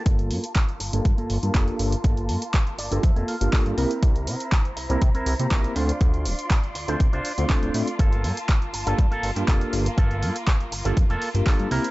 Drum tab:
HH |xxoxxxoxxxoxxxox|xxoxxxoxxxoxoxox|xxoxxxoxxxoxxxox|xxoxxxoxxxoxoxox|
CP |----x-------x---|----x-------x---|----x-------x---|----x-------x---|
BD |o---o---o---o---|o---o---o---o---|o---o---o---o---|o---o---o---o---|

HH |xxoxxxoxxxoxxxox|xxoxxxoxxxoxoxox|
CP |----x-------x---|----x-------x---|
BD |o---o---o---o---|o---o---o---o---|